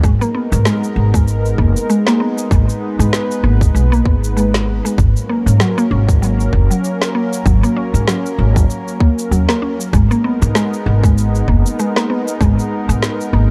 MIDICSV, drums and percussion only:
0, 0, Header, 1, 2, 480
1, 0, Start_track
1, 0, Key_signature, 5, "minor"
1, 0, Tempo, 618557
1, 27, Time_signature, 4, 2, 24, 8
1, 10480, End_track
2, 0, Start_track
2, 0, Title_t, "Drums"
2, 27, Note_on_c, 9, 36, 110
2, 33, Note_on_c, 9, 82, 55
2, 105, Note_off_c, 9, 36, 0
2, 110, Note_off_c, 9, 82, 0
2, 168, Note_on_c, 9, 82, 32
2, 246, Note_off_c, 9, 82, 0
2, 408, Note_on_c, 9, 82, 68
2, 486, Note_off_c, 9, 82, 0
2, 507, Note_on_c, 9, 38, 81
2, 514, Note_on_c, 9, 82, 53
2, 585, Note_off_c, 9, 38, 0
2, 592, Note_off_c, 9, 82, 0
2, 651, Note_on_c, 9, 82, 31
2, 728, Note_off_c, 9, 82, 0
2, 884, Note_on_c, 9, 36, 104
2, 890, Note_on_c, 9, 82, 66
2, 962, Note_off_c, 9, 36, 0
2, 967, Note_off_c, 9, 82, 0
2, 992, Note_on_c, 9, 82, 54
2, 1070, Note_off_c, 9, 82, 0
2, 1130, Note_on_c, 9, 82, 31
2, 1208, Note_off_c, 9, 82, 0
2, 1228, Note_on_c, 9, 36, 56
2, 1306, Note_off_c, 9, 36, 0
2, 1371, Note_on_c, 9, 82, 66
2, 1448, Note_off_c, 9, 82, 0
2, 1474, Note_on_c, 9, 82, 53
2, 1552, Note_off_c, 9, 82, 0
2, 1603, Note_on_c, 9, 38, 79
2, 1610, Note_on_c, 9, 82, 33
2, 1681, Note_off_c, 9, 38, 0
2, 1688, Note_off_c, 9, 82, 0
2, 1848, Note_on_c, 9, 82, 64
2, 1926, Note_off_c, 9, 82, 0
2, 1948, Note_on_c, 9, 36, 113
2, 1954, Note_on_c, 9, 82, 59
2, 2025, Note_off_c, 9, 36, 0
2, 2032, Note_off_c, 9, 82, 0
2, 2090, Note_on_c, 9, 82, 34
2, 2168, Note_off_c, 9, 82, 0
2, 2331, Note_on_c, 9, 82, 72
2, 2409, Note_off_c, 9, 82, 0
2, 2429, Note_on_c, 9, 38, 80
2, 2435, Note_on_c, 9, 82, 55
2, 2506, Note_off_c, 9, 38, 0
2, 2513, Note_off_c, 9, 82, 0
2, 2571, Note_on_c, 9, 82, 31
2, 2649, Note_off_c, 9, 82, 0
2, 2803, Note_on_c, 9, 36, 107
2, 2810, Note_on_c, 9, 82, 73
2, 2880, Note_off_c, 9, 36, 0
2, 2888, Note_off_c, 9, 82, 0
2, 2918, Note_on_c, 9, 82, 59
2, 2995, Note_off_c, 9, 82, 0
2, 3051, Note_on_c, 9, 82, 35
2, 3129, Note_off_c, 9, 82, 0
2, 3146, Note_on_c, 9, 36, 106
2, 3224, Note_off_c, 9, 36, 0
2, 3291, Note_on_c, 9, 82, 70
2, 3369, Note_off_c, 9, 82, 0
2, 3395, Note_on_c, 9, 82, 56
2, 3473, Note_off_c, 9, 82, 0
2, 3526, Note_on_c, 9, 38, 90
2, 3532, Note_on_c, 9, 82, 36
2, 3603, Note_off_c, 9, 38, 0
2, 3610, Note_off_c, 9, 82, 0
2, 3771, Note_on_c, 9, 82, 66
2, 3848, Note_off_c, 9, 82, 0
2, 3866, Note_on_c, 9, 36, 116
2, 3874, Note_on_c, 9, 82, 57
2, 3944, Note_off_c, 9, 36, 0
2, 3951, Note_off_c, 9, 82, 0
2, 4009, Note_on_c, 9, 82, 35
2, 4086, Note_off_c, 9, 82, 0
2, 4250, Note_on_c, 9, 82, 70
2, 4327, Note_off_c, 9, 82, 0
2, 4345, Note_on_c, 9, 38, 80
2, 4352, Note_on_c, 9, 82, 55
2, 4423, Note_off_c, 9, 38, 0
2, 4430, Note_off_c, 9, 82, 0
2, 4488, Note_on_c, 9, 82, 34
2, 4566, Note_off_c, 9, 82, 0
2, 4722, Note_on_c, 9, 36, 110
2, 4728, Note_on_c, 9, 82, 70
2, 4800, Note_off_c, 9, 36, 0
2, 4806, Note_off_c, 9, 82, 0
2, 4834, Note_on_c, 9, 82, 55
2, 4911, Note_off_c, 9, 82, 0
2, 4969, Note_on_c, 9, 82, 33
2, 5047, Note_off_c, 9, 82, 0
2, 5066, Note_on_c, 9, 36, 65
2, 5143, Note_off_c, 9, 36, 0
2, 5209, Note_on_c, 9, 82, 71
2, 5287, Note_off_c, 9, 82, 0
2, 5311, Note_on_c, 9, 82, 61
2, 5389, Note_off_c, 9, 82, 0
2, 5444, Note_on_c, 9, 38, 82
2, 5451, Note_on_c, 9, 82, 37
2, 5522, Note_off_c, 9, 38, 0
2, 5528, Note_off_c, 9, 82, 0
2, 5689, Note_on_c, 9, 82, 68
2, 5766, Note_off_c, 9, 82, 0
2, 5786, Note_on_c, 9, 36, 115
2, 5791, Note_on_c, 9, 82, 58
2, 5864, Note_off_c, 9, 36, 0
2, 5869, Note_off_c, 9, 82, 0
2, 5927, Note_on_c, 9, 82, 35
2, 6005, Note_off_c, 9, 82, 0
2, 6169, Note_on_c, 9, 82, 69
2, 6246, Note_off_c, 9, 82, 0
2, 6267, Note_on_c, 9, 38, 78
2, 6273, Note_on_c, 9, 82, 58
2, 6344, Note_off_c, 9, 38, 0
2, 6351, Note_off_c, 9, 82, 0
2, 6410, Note_on_c, 9, 82, 35
2, 6488, Note_off_c, 9, 82, 0
2, 6643, Note_on_c, 9, 36, 108
2, 6649, Note_on_c, 9, 82, 68
2, 6720, Note_off_c, 9, 36, 0
2, 6727, Note_off_c, 9, 82, 0
2, 6753, Note_on_c, 9, 82, 55
2, 6831, Note_off_c, 9, 82, 0
2, 6891, Note_on_c, 9, 82, 35
2, 6968, Note_off_c, 9, 82, 0
2, 6987, Note_on_c, 9, 36, 116
2, 7065, Note_off_c, 9, 36, 0
2, 7129, Note_on_c, 9, 82, 68
2, 7207, Note_off_c, 9, 82, 0
2, 7235, Note_on_c, 9, 82, 58
2, 7313, Note_off_c, 9, 82, 0
2, 7362, Note_on_c, 9, 38, 78
2, 7368, Note_on_c, 9, 82, 35
2, 7439, Note_off_c, 9, 38, 0
2, 7446, Note_off_c, 9, 82, 0
2, 7609, Note_on_c, 9, 82, 68
2, 7687, Note_off_c, 9, 82, 0
2, 7708, Note_on_c, 9, 36, 110
2, 7713, Note_on_c, 9, 82, 55
2, 7786, Note_off_c, 9, 36, 0
2, 7791, Note_off_c, 9, 82, 0
2, 7848, Note_on_c, 9, 82, 34
2, 7926, Note_off_c, 9, 82, 0
2, 8089, Note_on_c, 9, 82, 70
2, 8166, Note_off_c, 9, 82, 0
2, 8188, Note_on_c, 9, 38, 72
2, 8194, Note_on_c, 9, 82, 57
2, 8265, Note_off_c, 9, 38, 0
2, 8272, Note_off_c, 9, 82, 0
2, 8331, Note_on_c, 9, 82, 31
2, 8408, Note_off_c, 9, 82, 0
2, 8563, Note_on_c, 9, 36, 105
2, 8570, Note_on_c, 9, 82, 63
2, 8641, Note_off_c, 9, 36, 0
2, 8648, Note_off_c, 9, 82, 0
2, 8675, Note_on_c, 9, 82, 56
2, 8752, Note_off_c, 9, 82, 0
2, 8810, Note_on_c, 9, 82, 33
2, 8887, Note_off_c, 9, 82, 0
2, 8908, Note_on_c, 9, 36, 61
2, 8985, Note_off_c, 9, 36, 0
2, 9050, Note_on_c, 9, 82, 70
2, 9127, Note_off_c, 9, 82, 0
2, 9153, Note_on_c, 9, 82, 53
2, 9230, Note_off_c, 9, 82, 0
2, 9284, Note_on_c, 9, 38, 75
2, 9290, Note_on_c, 9, 82, 34
2, 9361, Note_off_c, 9, 38, 0
2, 9368, Note_off_c, 9, 82, 0
2, 9529, Note_on_c, 9, 82, 65
2, 9606, Note_off_c, 9, 82, 0
2, 9627, Note_on_c, 9, 36, 108
2, 9634, Note_on_c, 9, 82, 53
2, 9705, Note_off_c, 9, 36, 0
2, 9712, Note_off_c, 9, 82, 0
2, 9772, Note_on_c, 9, 82, 32
2, 9849, Note_off_c, 9, 82, 0
2, 10009, Note_on_c, 9, 82, 67
2, 10087, Note_off_c, 9, 82, 0
2, 10108, Note_on_c, 9, 38, 74
2, 10114, Note_on_c, 9, 82, 53
2, 10185, Note_off_c, 9, 38, 0
2, 10192, Note_off_c, 9, 82, 0
2, 10249, Note_on_c, 9, 82, 31
2, 10327, Note_off_c, 9, 82, 0
2, 10480, End_track
0, 0, End_of_file